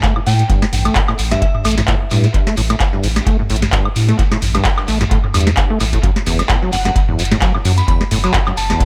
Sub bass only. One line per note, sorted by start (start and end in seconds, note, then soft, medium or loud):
0.27 0.43 A2 loud
0.73 0.89 A1 loud
1.19 1.35 A1 medium
1.65 1.82 A1 loud
2.11 2.28 A2 loud
2.57 2.74 A1 loud
3.04 3.20 A1 medium
3.50 3.66 A1 medium
3.96 4.12 A2 loud
4.42 4.59 A1 loud
4.88 5.05 A1 medium
5.34 5.51 E2 medium
5.81 5.97 A1 medium
6.27 6.43 F#1 loud
6.73 6.89 F#1 medium
7.19 7.36 F#1 loud
7.65 7.82 F#2 loud
8.11 8.28 F#1 loud
8.57 8.74 F#1 medium